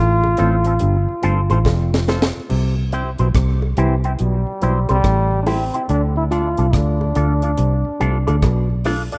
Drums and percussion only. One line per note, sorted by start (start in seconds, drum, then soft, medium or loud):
0.24 high bongo medium
0.37 closed hi-hat medium
0.64 closed hi-hat medium
0.79 closed hi-hat medium
1.23 closed hi-hat medium
1.50 closed hi-hat soft
1.50 high bongo medium
1.65 kick loud
1.65 snare medium
1.65 high bongo medium
1.94 snare loud
2.08 snare medium
2.08 high bongo medium
2.08 low bongo medium
2.22 snare loud
2.50 crash loud
2.92 closed hi-hat medium
3.18 closed hi-hat medium
3.35 kick loud
3.35 cross-stick loud
3.35 closed hi-hat loud
3.62 high bongo medium
3.77 closed hi-hat medium
4.04 closed hi-hat soft
4.19 closed hi-hat medium
4.62 closed hi-hat medium
4.89 closed hi-hat soft
4.89 high bongo medium
5.04 kick loud
5.04 cross-stick loud
5.04 closed hi-hat medium
5.04 high bongo medium
5.46 open hi-hat medium
5.46 high bongo medium
5.46 low bongo medium
5.74 closed hi-hat medium
5.89 closed hi-hat medium
6.32 closed hi-hat medium
6.57 closed hi-hat medium
6.73 kick loud
6.73 cross-stick loud
6.73 closed hi-hat medium
7.01 high bongo medium
7.15 closed hi-hat medium
7.42 closed hi-hat medium
7.57 closed hi-hat medium
8.01 closed hi-hat medium
8.28 closed hi-hat soft
8.28 high bongo medium
8.42 kick loud
8.42 cross-stick loud
8.42 closed hi-hat medium
8.42 high bongo medium
8.84 cross-stick medium
8.84 open hi-hat medium
8.84 high bongo medium
8.84 low bongo medium
9.12 closed hi-hat medium